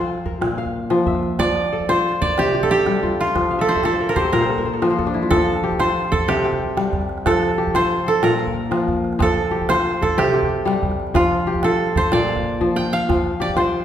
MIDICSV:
0, 0, Header, 1, 4, 480
1, 0, Start_track
1, 0, Key_signature, -1, "major"
1, 0, Tempo, 326442
1, 2042, Time_signature, 12, 3, 24, 8
1, 8759, Tempo, 323276
1, 20476, End_track
2, 0, Start_track
2, 0, Title_t, "Koto"
2, 0, Program_c, 0, 107
2, 0, Note_on_c, 0, 72, 75
2, 0, Note_on_c, 0, 74, 88
2, 798, Note_off_c, 0, 74, 0
2, 1711, Note_off_c, 0, 72, 0
2, 2052, Note_on_c, 0, 74, 107
2, 2780, Note_on_c, 0, 72, 99
2, 3253, Note_off_c, 0, 74, 0
2, 3259, Note_on_c, 0, 74, 91
2, 3512, Note_on_c, 0, 67, 90
2, 3866, Note_on_c, 0, 69, 69
2, 3976, Note_off_c, 0, 67, 0
2, 3982, Note_on_c, 0, 67, 83
2, 4713, Note_on_c, 0, 65, 79
2, 5302, Note_off_c, 0, 72, 0
2, 5306, Note_off_c, 0, 69, 0
2, 5312, Note_on_c, 0, 69, 83
2, 5420, Note_on_c, 0, 72, 81
2, 5612, Note_off_c, 0, 74, 0
2, 5656, Note_off_c, 0, 69, 0
2, 5662, Note_on_c, 0, 69, 83
2, 6015, Note_on_c, 0, 70, 75
2, 6103, Note_off_c, 0, 69, 0
2, 6103, Note_off_c, 0, 70, 0
2, 6110, Note_off_c, 0, 72, 0
2, 6116, Note_on_c, 0, 72, 80
2, 6360, Note_on_c, 0, 70, 77
2, 6982, Note_off_c, 0, 67, 0
2, 7801, Note_on_c, 0, 69, 98
2, 7889, Note_off_c, 0, 70, 0
2, 7928, Note_off_c, 0, 65, 0
2, 8519, Note_off_c, 0, 72, 0
2, 8525, Note_on_c, 0, 72, 97
2, 8991, Note_off_c, 0, 69, 0
2, 8997, Note_on_c, 0, 69, 84
2, 9243, Note_on_c, 0, 67, 81
2, 10697, Note_off_c, 0, 69, 0
2, 10702, Note_on_c, 0, 69, 91
2, 11070, Note_off_c, 0, 72, 0
2, 11430, Note_on_c, 0, 72, 101
2, 11905, Note_off_c, 0, 69, 0
2, 11911, Note_on_c, 0, 69, 83
2, 12142, Note_on_c, 0, 70, 86
2, 12232, Note_off_c, 0, 69, 0
2, 12271, Note_off_c, 0, 67, 0
2, 13609, Note_on_c, 0, 69, 92
2, 13698, Note_off_c, 0, 70, 0
2, 13977, Note_off_c, 0, 72, 0
2, 14309, Note_on_c, 0, 72, 103
2, 14792, Note_off_c, 0, 69, 0
2, 14798, Note_on_c, 0, 69, 80
2, 15029, Note_on_c, 0, 67, 84
2, 16482, Note_on_c, 0, 65, 86
2, 16856, Note_off_c, 0, 72, 0
2, 17196, Note_off_c, 0, 69, 0
2, 17202, Note_on_c, 0, 69, 82
2, 17692, Note_on_c, 0, 72, 93
2, 17921, Note_on_c, 0, 74, 93
2, 18058, Note_off_c, 0, 67, 0
2, 18863, Note_on_c, 0, 79, 92
2, 19112, Note_on_c, 0, 77, 83
2, 19728, Note_off_c, 0, 65, 0
2, 19827, Note_off_c, 0, 74, 0
2, 19833, Note_on_c, 0, 74, 80
2, 19922, Note_off_c, 0, 74, 0
2, 20028, Note_off_c, 0, 69, 0
2, 20064, Note_off_c, 0, 72, 0
2, 20070, Note_on_c, 0, 72, 71
2, 20476, Note_off_c, 0, 72, 0
2, 20476, Note_off_c, 0, 77, 0
2, 20476, Note_off_c, 0, 79, 0
2, 20476, End_track
3, 0, Start_track
3, 0, Title_t, "Kora"
3, 0, Program_c, 1, 46
3, 0, Note_on_c, 1, 53, 87
3, 0, Note_on_c, 1, 65, 65
3, 0, Note_on_c, 1, 69, 67
3, 0, Note_on_c, 1, 72, 58
3, 376, Note_on_c, 1, 70, 60
3, 464, Note_off_c, 1, 69, 0
3, 608, Note_on_c, 1, 46, 76
3, 673, Note_off_c, 1, 53, 0
3, 852, Note_on_c, 1, 77, 65
3, 1330, Note_on_c, 1, 53, 87
3, 1568, Note_on_c, 1, 76, 65
3, 1634, Note_off_c, 1, 72, 0
3, 1656, Note_off_c, 1, 65, 0
3, 1656, Note_off_c, 1, 77, 0
3, 2029, Note_off_c, 1, 53, 0
3, 2047, Note_on_c, 1, 53, 76
3, 2115, Note_off_c, 1, 46, 0
3, 2247, Note_off_c, 1, 70, 0
3, 2536, Note_on_c, 1, 69, 62
3, 2774, Note_on_c, 1, 65, 74
3, 2777, Note_on_c, 1, 72, 61
3, 2863, Note_off_c, 1, 76, 0
3, 3255, Note_on_c, 1, 70, 65
3, 3343, Note_off_c, 1, 69, 0
3, 3503, Note_on_c, 1, 48, 81
3, 3557, Note_off_c, 1, 53, 0
3, 3744, Note_on_c, 1, 67, 63
3, 4217, Note_on_c, 1, 55, 78
3, 4445, Note_off_c, 1, 65, 0
3, 4451, Note_on_c, 1, 65, 62
3, 4524, Note_off_c, 1, 72, 0
3, 4929, Note_on_c, 1, 53, 70
3, 4998, Note_off_c, 1, 48, 0
3, 4998, Note_off_c, 1, 55, 0
3, 5126, Note_off_c, 1, 70, 0
3, 5157, Note_on_c, 1, 77, 65
3, 5275, Note_on_c, 1, 76, 66
3, 5363, Note_off_c, 1, 65, 0
3, 5397, Note_on_c, 1, 74, 66
3, 5507, Note_off_c, 1, 76, 0
3, 5513, Note_on_c, 1, 76, 68
3, 5601, Note_off_c, 1, 77, 0
3, 5638, Note_off_c, 1, 74, 0
3, 5640, Note_on_c, 1, 65, 72
3, 5644, Note_on_c, 1, 74, 55
3, 5769, Note_on_c, 1, 72, 65
3, 5821, Note_off_c, 1, 67, 0
3, 5890, Note_on_c, 1, 70, 67
3, 6014, Note_on_c, 1, 69, 64
3, 6126, Note_on_c, 1, 67, 68
3, 6242, Note_off_c, 1, 69, 0
3, 6247, Note_on_c, 1, 69, 63
3, 6336, Note_off_c, 1, 70, 0
3, 6370, Note_on_c, 1, 46, 82
3, 6370, Note_on_c, 1, 70, 63
3, 6438, Note_off_c, 1, 53, 0
3, 6484, Note_off_c, 1, 72, 0
3, 6490, Note_on_c, 1, 72, 68
3, 6609, Note_off_c, 1, 69, 0
3, 6615, Note_on_c, 1, 69, 64
3, 6704, Note_off_c, 1, 70, 0
3, 6734, Note_on_c, 1, 70, 68
3, 6838, Note_off_c, 1, 72, 0
3, 6844, Note_on_c, 1, 72, 63
3, 6957, Note_off_c, 1, 69, 0
3, 6963, Note_on_c, 1, 69, 59
3, 7033, Note_off_c, 1, 76, 0
3, 7051, Note_off_c, 1, 70, 0
3, 7085, Note_on_c, 1, 70, 64
3, 7086, Note_on_c, 1, 53, 77
3, 7204, Note_off_c, 1, 72, 0
3, 7210, Note_on_c, 1, 72, 69
3, 7273, Note_off_c, 1, 74, 0
3, 7323, Note_off_c, 1, 69, 0
3, 7329, Note_on_c, 1, 69, 63
3, 7417, Note_off_c, 1, 70, 0
3, 7450, Note_on_c, 1, 62, 68
3, 7557, Note_on_c, 1, 64, 62
3, 7645, Note_off_c, 1, 65, 0
3, 7681, Note_on_c, 1, 65, 61
3, 7792, Note_off_c, 1, 53, 0
3, 7809, Note_on_c, 1, 53, 83
3, 7875, Note_off_c, 1, 46, 0
3, 7898, Note_off_c, 1, 64, 0
3, 8203, Note_off_c, 1, 67, 0
3, 8286, Note_on_c, 1, 67, 72
3, 8519, Note_off_c, 1, 65, 0
3, 8519, Note_off_c, 1, 72, 0
3, 8525, Note_on_c, 1, 65, 69
3, 8525, Note_on_c, 1, 72, 59
3, 9242, Note_on_c, 1, 48, 88
3, 9271, Note_off_c, 1, 69, 0
3, 9315, Note_off_c, 1, 53, 0
3, 9482, Note_off_c, 1, 67, 0
3, 9487, Note_on_c, 1, 67, 68
3, 9931, Note_off_c, 1, 62, 0
3, 9963, Note_on_c, 1, 55, 76
3, 10286, Note_off_c, 1, 72, 0
3, 10690, Note_on_c, 1, 53, 75
3, 10760, Note_off_c, 1, 48, 0
3, 10760, Note_off_c, 1, 55, 0
3, 10770, Note_off_c, 1, 65, 0
3, 11162, Note_off_c, 1, 67, 0
3, 11168, Note_on_c, 1, 67, 74
3, 11409, Note_on_c, 1, 72, 54
3, 11412, Note_on_c, 1, 65, 72
3, 11887, Note_on_c, 1, 69, 62
3, 12130, Note_on_c, 1, 46, 84
3, 12204, Note_off_c, 1, 53, 0
3, 12369, Note_on_c, 1, 77, 66
3, 12849, Note_on_c, 1, 53, 81
3, 13172, Note_off_c, 1, 72, 0
3, 13265, Note_off_c, 1, 67, 0
3, 13542, Note_off_c, 1, 53, 0
3, 13560, Note_on_c, 1, 53, 83
3, 13645, Note_off_c, 1, 46, 0
3, 13659, Note_off_c, 1, 65, 0
3, 13844, Note_off_c, 1, 69, 0
3, 13852, Note_off_c, 1, 77, 0
3, 14038, Note_on_c, 1, 67, 70
3, 14298, Note_on_c, 1, 72, 55
3, 14300, Note_on_c, 1, 65, 65
3, 14782, Note_on_c, 1, 69, 61
3, 15022, Note_on_c, 1, 48, 83
3, 15085, Note_off_c, 1, 53, 0
3, 15252, Note_off_c, 1, 67, 0
3, 15258, Note_on_c, 1, 67, 69
3, 15734, Note_on_c, 1, 55, 88
3, 16061, Note_off_c, 1, 72, 0
3, 16460, Note_on_c, 1, 53, 85
3, 16523, Note_off_c, 1, 48, 0
3, 16523, Note_off_c, 1, 55, 0
3, 16548, Note_off_c, 1, 65, 0
3, 16738, Note_off_c, 1, 69, 0
3, 16937, Note_off_c, 1, 67, 0
3, 16943, Note_on_c, 1, 67, 71
3, 17190, Note_on_c, 1, 65, 75
3, 17196, Note_on_c, 1, 72, 53
3, 17666, Note_on_c, 1, 69, 62
3, 17908, Note_on_c, 1, 46, 83
3, 17960, Note_off_c, 1, 53, 0
3, 18149, Note_on_c, 1, 77, 65
3, 18634, Note_on_c, 1, 53, 78
3, 18960, Note_off_c, 1, 72, 0
3, 19040, Note_off_c, 1, 67, 0
3, 19330, Note_off_c, 1, 53, 0
3, 19348, Note_on_c, 1, 53, 73
3, 19397, Note_off_c, 1, 46, 0
3, 19437, Note_off_c, 1, 65, 0
3, 19622, Note_off_c, 1, 69, 0
3, 19632, Note_off_c, 1, 77, 0
3, 19810, Note_on_c, 1, 67, 64
3, 20052, Note_on_c, 1, 72, 63
3, 20053, Note_on_c, 1, 65, 72
3, 20476, Note_off_c, 1, 53, 0
3, 20476, Note_off_c, 1, 65, 0
3, 20476, Note_off_c, 1, 67, 0
3, 20476, Note_off_c, 1, 72, 0
3, 20476, End_track
4, 0, Start_track
4, 0, Title_t, "Calabash"
4, 23, Note_on_c, 9, 38, 19
4, 170, Note_off_c, 9, 38, 0
4, 258, Note_on_c, 9, 38, 17
4, 380, Note_on_c, 9, 36, 57
4, 405, Note_off_c, 9, 38, 0
4, 527, Note_off_c, 9, 36, 0
4, 618, Note_on_c, 9, 38, 64
4, 765, Note_off_c, 9, 38, 0
4, 969, Note_on_c, 9, 36, 42
4, 1116, Note_off_c, 9, 36, 0
4, 1327, Note_on_c, 9, 38, 52
4, 1442, Note_off_c, 9, 38, 0
4, 1442, Note_on_c, 9, 38, 18
4, 1565, Note_on_c, 9, 36, 54
4, 1589, Note_off_c, 9, 38, 0
4, 1689, Note_on_c, 9, 38, 20
4, 1712, Note_off_c, 9, 36, 0
4, 1807, Note_off_c, 9, 38, 0
4, 1807, Note_on_c, 9, 38, 20
4, 1932, Note_off_c, 9, 38, 0
4, 1932, Note_on_c, 9, 38, 18
4, 2045, Note_off_c, 9, 38, 0
4, 2045, Note_on_c, 9, 36, 59
4, 2045, Note_on_c, 9, 38, 61
4, 2192, Note_off_c, 9, 36, 0
4, 2192, Note_off_c, 9, 38, 0
4, 2290, Note_on_c, 9, 38, 20
4, 2415, Note_off_c, 9, 38, 0
4, 2415, Note_on_c, 9, 38, 17
4, 2562, Note_off_c, 9, 38, 0
4, 2649, Note_on_c, 9, 36, 43
4, 2781, Note_on_c, 9, 38, 52
4, 2796, Note_off_c, 9, 36, 0
4, 2888, Note_off_c, 9, 38, 0
4, 2888, Note_on_c, 9, 38, 17
4, 3035, Note_off_c, 9, 38, 0
4, 3133, Note_on_c, 9, 38, 19
4, 3264, Note_on_c, 9, 36, 56
4, 3280, Note_off_c, 9, 38, 0
4, 3411, Note_off_c, 9, 36, 0
4, 3496, Note_on_c, 9, 38, 64
4, 3643, Note_off_c, 9, 38, 0
4, 3862, Note_on_c, 9, 36, 38
4, 4009, Note_off_c, 9, 36, 0
4, 4211, Note_on_c, 9, 38, 51
4, 4337, Note_off_c, 9, 38, 0
4, 4337, Note_on_c, 9, 38, 16
4, 4463, Note_on_c, 9, 36, 47
4, 4484, Note_off_c, 9, 38, 0
4, 4578, Note_on_c, 9, 38, 17
4, 4610, Note_off_c, 9, 36, 0
4, 4709, Note_off_c, 9, 38, 0
4, 4709, Note_on_c, 9, 38, 17
4, 4830, Note_off_c, 9, 38, 0
4, 4830, Note_on_c, 9, 38, 17
4, 4935, Note_off_c, 9, 38, 0
4, 4935, Note_on_c, 9, 36, 53
4, 4935, Note_on_c, 9, 38, 50
4, 5050, Note_off_c, 9, 38, 0
4, 5050, Note_on_c, 9, 38, 18
4, 5082, Note_off_c, 9, 36, 0
4, 5171, Note_off_c, 9, 38, 0
4, 5171, Note_on_c, 9, 38, 17
4, 5318, Note_off_c, 9, 38, 0
4, 5532, Note_on_c, 9, 36, 39
4, 5640, Note_on_c, 9, 38, 56
4, 5679, Note_off_c, 9, 36, 0
4, 5787, Note_off_c, 9, 38, 0
4, 6121, Note_on_c, 9, 36, 52
4, 6268, Note_off_c, 9, 36, 0
4, 6369, Note_on_c, 9, 38, 58
4, 6516, Note_off_c, 9, 38, 0
4, 6602, Note_on_c, 9, 38, 15
4, 6729, Note_on_c, 9, 36, 40
4, 6749, Note_off_c, 9, 38, 0
4, 6855, Note_on_c, 9, 38, 19
4, 6876, Note_off_c, 9, 36, 0
4, 7002, Note_off_c, 9, 38, 0
4, 7093, Note_on_c, 9, 38, 54
4, 7240, Note_off_c, 9, 38, 0
4, 7338, Note_on_c, 9, 36, 56
4, 7446, Note_on_c, 9, 38, 18
4, 7485, Note_off_c, 9, 36, 0
4, 7569, Note_off_c, 9, 38, 0
4, 7569, Note_on_c, 9, 38, 17
4, 7716, Note_off_c, 9, 38, 0
4, 7809, Note_on_c, 9, 36, 67
4, 7809, Note_on_c, 9, 38, 66
4, 7956, Note_off_c, 9, 36, 0
4, 7956, Note_off_c, 9, 38, 0
4, 8057, Note_on_c, 9, 38, 21
4, 8173, Note_off_c, 9, 38, 0
4, 8173, Note_on_c, 9, 38, 22
4, 8320, Note_off_c, 9, 38, 0
4, 8411, Note_on_c, 9, 36, 56
4, 8522, Note_on_c, 9, 38, 71
4, 8558, Note_off_c, 9, 36, 0
4, 8657, Note_off_c, 9, 38, 0
4, 8657, Note_on_c, 9, 38, 20
4, 8804, Note_off_c, 9, 38, 0
4, 8888, Note_on_c, 9, 38, 23
4, 9015, Note_on_c, 9, 36, 67
4, 9036, Note_off_c, 9, 38, 0
4, 9163, Note_off_c, 9, 36, 0
4, 9249, Note_on_c, 9, 38, 82
4, 9397, Note_off_c, 9, 38, 0
4, 9604, Note_on_c, 9, 36, 56
4, 9752, Note_off_c, 9, 36, 0
4, 9973, Note_on_c, 9, 38, 70
4, 10095, Note_off_c, 9, 38, 0
4, 10095, Note_on_c, 9, 38, 22
4, 10202, Note_on_c, 9, 36, 60
4, 10243, Note_off_c, 9, 38, 0
4, 10326, Note_on_c, 9, 38, 23
4, 10350, Note_off_c, 9, 36, 0
4, 10446, Note_off_c, 9, 38, 0
4, 10446, Note_on_c, 9, 38, 22
4, 10571, Note_off_c, 9, 38, 0
4, 10571, Note_on_c, 9, 38, 25
4, 10693, Note_off_c, 9, 38, 0
4, 10693, Note_on_c, 9, 36, 79
4, 10693, Note_on_c, 9, 38, 72
4, 10841, Note_off_c, 9, 36, 0
4, 10841, Note_off_c, 9, 38, 0
4, 10943, Note_on_c, 9, 38, 22
4, 11062, Note_off_c, 9, 38, 0
4, 11062, Note_on_c, 9, 38, 20
4, 11211, Note_off_c, 9, 38, 0
4, 11306, Note_on_c, 9, 36, 49
4, 11421, Note_on_c, 9, 38, 70
4, 11454, Note_off_c, 9, 36, 0
4, 11548, Note_off_c, 9, 38, 0
4, 11548, Note_on_c, 9, 38, 23
4, 11696, Note_off_c, 9, 38, 0
4, 11782, Note_on_c, 9, 38, 21
4, 11931, Note_off_c, 9, 38, 0
4, 12132, Note_on_c, 9, 38, 77
4, 12281, Note_off_c, 9, 38, 0
4, 12493, Note_on_c, 9, 36, 52
4, 12641, Note_off_c, 9, 36, 0
4, 12860, Note_on_c, 9, 38, 60
4, 12988, Note_off_c, 9, 38, 0
4, 12988, Note_on_c, 9, 38, 20
4, 13101, Note_on_c, 9, 36, 65
4, 13137, Note_off_c, 9, 38, 0
4, 13250, Note_off_c, 9, 36, 0
4, 13346, Note_on_c, 9, 38, 23
4, 13464, Note_off_c, 9, 38, 0
4, 13464, Note_on_c, 9, 38, 24
4, 13581, Note_off_c, 9, 38, 0
4, 13581, Note_on_c, 9, 36, 76
4, 13581, Note_on_c, 9, 38, 69
4, 13729, Note_off_c, 9, 36, 0
4, 13729, Note_off_c, 9, 38, 0
4, 13830, Note_on_c, 9, 38, 24
4, 13941, Note_off_c, 9, 38, 0
4, 13941, Note_on_c, 9, 38, 20
4, 14090, Note_off_c, 9, 38, 0
4, 14188, Note_on_c, 9, 36, 52
4, 14301, Note_on_c, 9, 38, 74
4, 14336, Note_off_c, 9, 36, 0
4, 14433, Note_off_c, 9, 38, 0
4, 14433, Note_on_c, 9, 38, 21
4, 14582, Note_off_c, 9, 38, 0
4, 14677, Note_on_c, 9, 38, 23
4, 14802, Note_on_c, 9, 36, 68
4, 14826, Note_off_c, 9, 38, 0
4, 14950, Note_off_c, 9, 36, 0
4, 15046, Note_on_c, 9, 38, 72
4, 15194, Note_off_c, 9, 38, 0
4, 15398, Note_on_c, 9, 36, 53
4, 15546, Note_off_c, 9, 36, 0
4, 15765, Note_on_c, 9, 38, 65
4, 15887, Note_off_c, 9, 38, 0
4, 15887, Note_on_c, 9, 38, 19
4, 15990, Note_on_c, 9, 36, 62
4, 16036, Note_off_c, 9, 38, 0
4, 16121, Note_on_c, 9, 38, 24
4, 16138, Note_off_c, 9, 36, 0
4, 16244, Note_off_c, 9, 38, 0
4, 16244, Note_on_c, 9, 38, 22
4, 16348, Note_off_c, 9, 38, 0
4, 16348, Note_on_c, 9, 38, 22
4, 16470, Note_off_c, 9, 38, 0
4, 16470, Note_on_c, 9, 36, 73
4, 16470, Note_on_c, 9, 38, 68
4, 16618, Note_off_c, 9, 36, 0
4, 16618, Note_off_c, 9, 38, 0
4, 16847, Note_on_c, 9, 38, 20
4, 16995, Note_off_c, 9, 38, 0
4, 17068, Note_on_c, 9, 36, 54
4, 17068, Note_on_c, 9, 38, 23
4, 17181, Note_off_c, 9, 38, 0
4, 17181, Note_on_c, 9, 38, 71
4, 17217, Note_off_c, 9, 36, 0
4, 17312, Note_off_c, 9, 38, 0
4, 17312, Note_on_c, 9, 38, 19
4, 17460, Note_off_c, 9, 38, 0
4, 17670, Note_on_c, 9, 36, 66
4, 17819, Note_off_c, 9, 36, 0
4, 17908, Note_on_c, 9, 38, 75
4, 18039, Note_off_c, 9, 38, 0
4, 18039, Note_on_c, 9, 38, 20
4, 18187, Note_off_c, 9, 38, 0
4, 18274, Note_on_c, 9, 36, 55
4, 18274, Note_on_c, 9, 38, 21
4, 18388, Note_off_c, 9, 36, 0
4, 18388, Note_on_c, 9, 36, 39
4, 18423, Note_off_c, 9, 38, 0
4, 18537, Note_off_c, 9, 36, 0
4, 18640, Note_on_c, 9, 36, 38
4, 18789, Note_off_c, 9, 36, 0
4, 18871, Note_on_c, 9, 38, 45
4, 19020, Note_off_c, 9, 38, 0
4, 19112, Note_on_c, 9, 38, 47
4, 19260, Note_off_c, 9, 38, 0
4, 19361, Note_on_c, 9, 36, 67
4, 19361, Note_on_c, 9, 38, 61
4, 19509, Note_off_c, 9, 36, 0
4, 19509, Note_off_c, 9, 38, 0
4, 19607, Note_on_c, 9, 38, 19
4, 19716, Note_off_c, 9, 38, 0
4, 19716, Note_on_c, 9, 38, 19
4, 19864, Note_off_c, 9, 38, 0
4, 19947, Note_on_c, 9, 36, 49
4, 20059, Note_on_c, 9, 38, 73
4, 20095, Note_off_c, 9, 36, 0
4, 20167, Note_off_c, 9, 38, 0
4, 20167, Note_on_c, 9, 38, 20
4, 20316, Note_off_c, 9, 38, 0
4, 20411, Note_on_c, 9, 38, 20
4, 20476, Note_off_c, 9, 38, 0
4, 20476, End_track
0, 0, End_of_file